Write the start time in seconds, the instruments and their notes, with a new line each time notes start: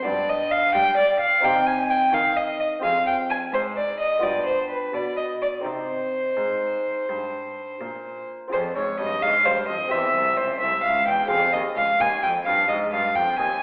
0.02 cello G2, lute B3 D4 G4, violin D5
0.07 lute G2
0.29 violin D#5
0.51 violin F5
0.75 cello G3, lute G3, violin G5
0.98 violin D5
1.20 violin F5
1.40 cello C3, lute C4 D#4 G4, violin G5
1.45 lute C3
1.66 violin G#5
1.90 violin G5
2.13 cello D#3, lute D#3, violin F5
2.37 violin D#5
2.60 violin D#5
2.79 cello F2, lute C4 F4 G#4, violin F5
2.84 lute F2
3.07 violin G5
3.30 violin G#5
3.53 cello G#2, lute G#2, violin C5
3.77 violin D5
4.00 violin D#5
4.19 cello G2, lute B3 F4 G4, violin D5
4.24 lute G2
4.46 violin C5
4.70 violin B4
4.94 cello B2, lute B2, violin D5
5.17 violin D#5
5.42 violin D5
5.60 lute C4 D#4 G4
5.65 cello C3, lute C3, violin C5
6.37 lute G#2, cello G#2
7.09 lute G2, cello G2
7.81 lute A#2, cello A#2
8.48 lute C4 F4 G#4
8.52 lute F2, cello F2, violin C5
8.76 lute G#2, cello G#2, violin C#5
8.99 cello G2, lute G2, violin D#5
9.22 lute G#2, cello G#2, violin F5
9.45 cello G2, lute G2, violin C5
9.69 cello F2, lute F2, violin D#5
9.88 cello E2, lute C4 G4 C5, violin E5
9.92 lute E2
10.15 cello C2
10.37 cello C#2, violin C5
10.61 cello C2, violin E5
10.84 cello C#2, violin F5
11.08 cello E2, lute E2, violin G5
11.26 lute C4 G#4 C5, violin F5
11.31 cello F2, lute F2
11.53 cello D#2, lute D#2, violin D#5
11.76 cello C#2, violin F5
12.00 cello D#2, lute D#2, violin G#5
12.23 cello F2, lute F2, violin G5
12.45 cello G2, lute G2, violin F5
12.69 cello G#2, lute G#2, violin D#5
12.92 cello G2, lute G2, violin F5
13.15 cello F2, lute F2, violin G5
13.38 cello D#2, lute D#2, violin G#5